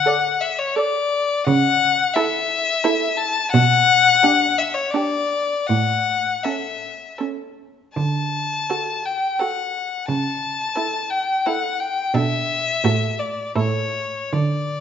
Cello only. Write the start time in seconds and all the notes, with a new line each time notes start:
1.47 C#3
3.54 B2
5.69 A2
7.96 D3
10.08 C#3
12.14 B2
12.84 A2
13.56 A2
14.33 D3